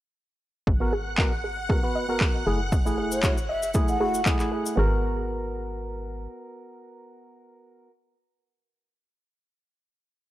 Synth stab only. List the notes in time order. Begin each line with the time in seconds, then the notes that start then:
0.80 B3 F#4 A#4
1.18 B3 F#4 A#4
1.69 B3 F#4 A#4
1.83 B3 F#4 B4
2.09 B3 F#4 A#4
2.46 A3 E4 G#4
2.85 A3 E4 G#4
3.23 A3 E4 F#4
3.74 A3 E4 G#4
4.00 A3 E4 F#4
4.26 A3 E4 G#4
4.39 A3 E4 G#4
4.76 B3 F#4 A#4